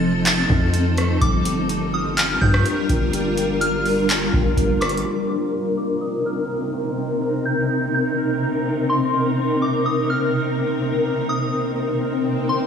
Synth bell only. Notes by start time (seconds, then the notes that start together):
Already playing: A6
0.26 A6
1.21 D6
1.94 D#6
2.17 F6
2.41 G6
3.61 F6
4.81 D6
5.05 C6
5.78 D6
6.01 D#6
6.26 F6
7.45 G6
7.94 G6
8.90 C6
9.62 D6
9.86 D#6
10.10 F6
11.29 D#6
12.49 C6